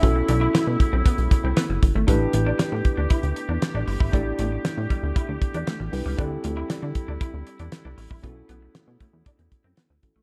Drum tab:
HH |x-x-x-x-xxx-x-x-|x-x-x-x-xxx-x-o-|x-x-x-x-x-xxx-o-|x-x-x-x-x-xxx-o-|
SD |----o-------o---|----o-------o---|----o-------o---|----o-------o---|
BD |o-----o-o-o---o-|o-----o-o------o|o-----o-o-o-----|o-----o-o------o|

HH |x-x-x-x-xxx-x-x-|
SD |----o-------o---|
BD |o-----o-o-o---o-|